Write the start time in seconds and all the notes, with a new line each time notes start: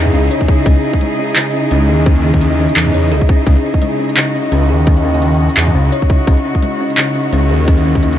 Already playing: E2 C#3 D#4 E4 G#4 D#5
0.06 mid tom
0.13 C#2 C#4
0.31 C#5, closed hi-hat
0.41 kick
0.48 C#3, kick
0.66 C#2 C#4, kick, closed hi-hat
0.76 open hi-hat
0.84 C#4
0.93 kick, open hi-hat
1.01 G#3, closed hi-hat
1.19 C#4
1.29 closed hi-hat
1.30 closed hi-hat
1.34 clap, closed hi-hat
1.36 C#3, closed hi-hat
1.54 C#4
1.71 C#2 C#4, closed hi-hat
1.89 D#2 G#4
2.06 C#4, kick, closed hi-hat
2.16 open hi-hat
2.24 C#4
2.34 D#2, kick, closed hi-hat
2.41 C#4, closed hi-hat
2.59 C#4
2.69 closed hi-hat
2.76 E2 G#4, clap, closed hi-hat
2.86 mid tom
2.94 C#5
3.12 C#2 G#4, closed hi-hat
3.21 kick
3.29 C#4, kick
3.47 C#2 C#4, kick, closed hi-hat
3.57 open hi-hat
3.64 C#4
3.74 kick, open hi-hat
3.82 G#3, closed hi-hat
3.99 C#4
4.09 closed hi-hat
4.15 C#3 F#4, clap, closed hi-hat
4.34 C#4
4.52 C#2 C#4, closed hi-hat
4.70 D#2 G#4
4.87 C#4, kick, closed hi-hat
4.97 open hi-hat
5.05 C#4
5.14 D#2, closed hi-hat
5.22 C#4, closed hi-hat
5.40 C#4
5.50 closed hi-hat
5.57 E2 G#4, clap, closed hi-hat
5.67 mid tom
5.75 C#2 C#4
5.92 C#5, closed hi-hat
6.02 kick
6.10 C#3, kick
6.27 C#2 C#4, kick, closed hi-hat
6.37 open hi-hat
6.45 C#4
6.55 kick, open hi-hat
6.62 G#3, closed hi-hat
6.80 C#4
6.90 closed hi-hat
6.98 C#3, clap, closed hi-hat
7.15 C#4
7.33 C#2 C#4, closed hi-hat
7.50 D#2 G#4
7.68 C#4, kick, closed hi-hat
7.78 open hi-hat
7.85 C#4
7.95 D#2, kick, open hi-hat
8.03 C#4, closed hi-hat
8.13 closed hi-hat